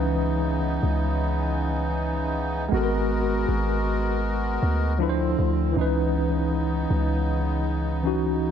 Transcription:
Already playing: 808-style bass C#2, accordion C#3 E3 B3 D#4, tine electric piano E3 C#4 D#4 B4
0.83 808-style bass C#2
2.68 808-style bass G#1, tine electric piano G#3 B3, accordion G#3
2.73 accordion B3 F#4 A#4, tine electric piano F#4
2.77 tine electric piano A4
2.83 tine electric piano A#4
3.48 808-style bass G#1
4.62 808-style bass D2
4.99 accordion D3 F3 C4, tine electric piano F3 D4 E4
5.03 tine electric piano B4
5.09 tine electric piano C5
5.38 808-style bass D2
5.72 accordion C#3 B3 D#4, tine electric piano E3 C#4
5.76 808-style bass C#2, tine electric piano D#4
5.81 tine electric piano B4
6.90 808-style bass C#2
8.03 tine electric piano E3 C#4 D#4
8.07 tine electric piano F#4

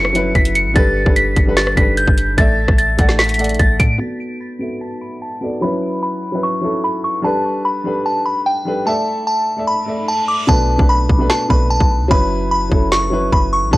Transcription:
Already playing: 808-style bass F#1, grand piano F#3 C#4 E4 A4 B4, synth bell C#7
0.05 cross-stick
0.13 grand piano F#3 C#4 E4 B4, closed hi-hat
0.35 808-style bass F#1, synth bell B6, kick, closed hi-hat
0.45 closed hi-hat
0.55 synth bell C#7, closed hi-hat
0.66 808-style bass A1
0.74 808-style bass G1, grand piano G3 D4 A4 B4, synth bell A6, kick, closed hi-hat
1.05 808-style bass G1, grand piano G3 D4 A4 B4, kick
1.16 synth bell B6, closed hi-hat
1.36 808-style bass G1, kick, closed hi-hat
1.46 grand piano G3 D4 A4 B4
1.57 synth bell A6, snare, closed hi-hat
1.67 cross-stick
1.76 808-style bass G1, grand piano G3 D4 A4 B4, synth bell B6, kick, closed hi-hat
1.97 synth bell G6, closed hi-hat
2.07 808-style bass G1, kick
2.18 closed hi-hat
2.37 808-style bass A1, grand piano A3 A4 D5 E5, synth bell A6, kick, closed hi-hat
2.68 808-style bass A1, kick, cross-stick
2.78 synth bell A6, closed hi-hat
2.97 808-style bass A1, grand piano A3 A4 D5 F#5, kick, closed hi-hat
3.09 snare
3.19 synth bell B6, snare, closed hi-hat
3.24 closed hi-hat
3.29 closed hi-hat
3.34 grand piano A3, closed hi-hat
3.39 grand piano A4 D5 F#5, closed hi-hat
3.44 closed hi-hat
3.49 closed hi-hat
3.54 closed hi-hat
3.59 808-style bass A1, synth bell A6, kick, closed hi-hat
3.80 808-style bass A2, synth bell D7, kick, closed hi-hat
3.98 grand piano B3 F#4 A4 D5, synth bell A5
4.40 synth bell B5
4.59 grand piano B3 F#4 A4 E5
4.81 synth bell A5
5.01 synth bell B5
5.22 synth bell A5
5.41 grand piano B3 F#4 A4 D5
5.61 grand piano F#3 C#4 E4 B4, synth bell B5
6.03 synth bell B5
6.32 grand piano F#3 C#4 E4 B4
6.43 synth bell C#6
6.61 grand piano F#3 C#4 E4 A4
6.84 synth bell B5
7.04 synth bell C#6
7.22 grand piano G3 D4 A4 B4, synth bell A5
7.65 synth bell B5
7.84 grand piano G3 D4 A4 B4
8.06 synth bell A5
8.26 synth bell B5
8.46 synth bell G5
8.65 grand piano G3 D4 A4 B4
8.86 grand piano A3 A4 D5 E5, synth bell A5
9.27 synth bell A5
9.56 grand piano A3 A4 D5 E5
9.67 synth bell B5, reverse cymbal
9.86 grand piano A3 A4 D5 E5
10.08 synth bell A5
10.28 synth bell D6
10.47 808-style bass B1, grand piano B2 A3 D4 B4, synth bell A5, kick
10.78 808-style bass B1, grand piano B2 A3 D4 B4, kick
10.89 synth bell B5
11.09 808-style bass B1, kick
11.18 grand piano B2 A3 D4 B4
11.30 synth bell A5, snare
11.49 808-style bass B1, grand piano B2 A3 D4 B4, synth bell B5, kick
11.70 synth bell A5
11.80 808-style bass B1, kick
12.01 808-style bass C#2
12.08 808-style bass F#1, grand piano F#3 C#4 E4 B4, synth bell B5, kick
12.51 synth bell B5
12.70 808-style bass F#1, grand piano F#3 C#4 E4 A4, kick
12.92 synth bell C#6, snare
13.10 grand piano F#3 C#4 E4 B4
13.32 808-style bass F#1, synth bell B5, kick
13.53 synth bell C#6
13.63 808-style bass A1
13.71 808-style bass G1, grand piano G3 D4 A4 B4, synth bell A5, kick

